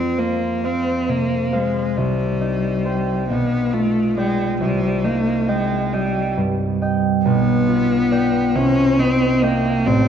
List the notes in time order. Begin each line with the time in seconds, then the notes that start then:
Already playing: F2 C4 F4 C5
0.18 A#3 C5 F5
0.64 C4 C5 F5
1.08 C3 A#3
1.52 G#3 C5 F5
1.97 C2 G3
2.41 D#4
2.85 C5 G5
3.29 B1 B3
3.73 A3 F4
4.17 G#3 D5 G5
4.61 C2 G3
5.04 A#3 D#4
5.48 G#3 D#5 G5
5.93 G3 D#5 G5
6.37 G2
6.82 D#5 G5
7.25 B1 B3
7.69 F4
8.12 D5 G5
8.55 C2 C#4
8.99 C4 D#4
9.42 A#3 D#5 G5
9.86 A1 C4